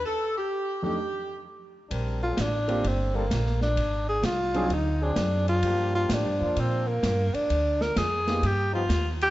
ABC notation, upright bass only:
X:1
M:4/4
L:1/8
Q:"Swing" 1/4=129
K:Bb
V:1 name="Upright bass" clef=bass
z8 | B,,,2 A,,,2 G,,,2 B,,,2 | _A,,,2 C,,2 D,,2 _G,,2 | G,,2 (3A,, G,, F,, B,,2 G,, z |
D,,2 F,,2 G,,2 ^D,,2 |]